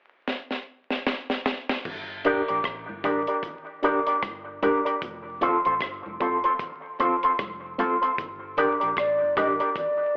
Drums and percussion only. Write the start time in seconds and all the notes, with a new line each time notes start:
0.28 snare
0.51 snare
0.90 snare
1.07 snare
1.30 snare
1.46 snare
1.69 snare
1.85 kick, crash, low conga
2.24 closed hi-hat, low conga
2.48 closed hi-hat
2.64 kick, cross-stick, closed hi-hat
2.89 high conga
3.04 kick, cross-stick, closed hi-hat, high conga
3.27 closed hi-hat
3.43 kick, closed hi-hat, low conga
3.83 closed hi-hat, low conga
4.07 closed hi-hat
4.23 kick, cross-stick, closed hi-hat, high conga
4.62 closed hi-hat, high conga
4.86 closed hi-hat
5.02 kick, closed hi-hat, low conga
5.41 closed hi-hat, low conga
5.65 closed hi-hat
5.81 kick, cross-stick, closed hi-hat
6.06 high conga
6.21 kick, closed hi-hat, high conga
6.44 closed hi-hat
6.59 kick, closed hi-hat, low conga
7.00 closed hi-hat, low conga
7.23 closed hi-hat
7.39 kick, cross-stick, closed hi-hat, high conga
7.79 closed hi-hat, high conga
8.03 closed hi-hat
8.18 kick, closed hi-hat, low conga
8.57 closed hi-hat, low conga
8.81 closed hi-hat
8.97 kick, cross-stick, closed hi-hat
9.37 kick, cross-stick, closed hi-hat, high conga
9.60 closed hi-hat
9.76 kick, closed hi-hat, low conga